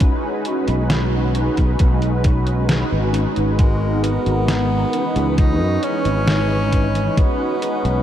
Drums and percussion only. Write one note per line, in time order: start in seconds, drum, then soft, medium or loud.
0.00 kick loud
0.00 closed hi-hat medium
0.45 closed hi-hat medium
0.68 closed hi-hat medium
0.90 snare loud
0.90 closed hi-hat medium
1.35 closed hi-hat medium
1.57 kick medium
1.57 closed hi-hat soft
1.79 kick loud
1.79 closed hi-hat medium
2.02 closed hi-hat soft
2.24 kick loud
2.24 closed hi-hat medium
2.47 closed hi-hat medium
2.69 snare loud
2.69 closed hi-hat medium
3.14 closed hi-hat medium
3.36 closed hi-hat soft
3.59 kick loud
3.59 closed hi-hat medium
4.04 closed hi-hat medium
4.26 closed hi-hat soft
4.48 snare loud
4.48 closed hi-hat medium
4.93 closed hi-hat medium
5.16 closed hi-hat soft
5.38 kick loud
5.38 closed hi-hat medium
5.83 closed hi-hat medium
6.05 closed hi-hat soft
6.28 snare loud
6.28 closed hi-hat medium
6.73 kick medium
6.73 closed hi-hat medium
6.95 closed hi-hat soft
7.17 kick loud
7.17 closed hi-hat medium
7.62 closed hi-hat medium
7.85 closed hi-hat soft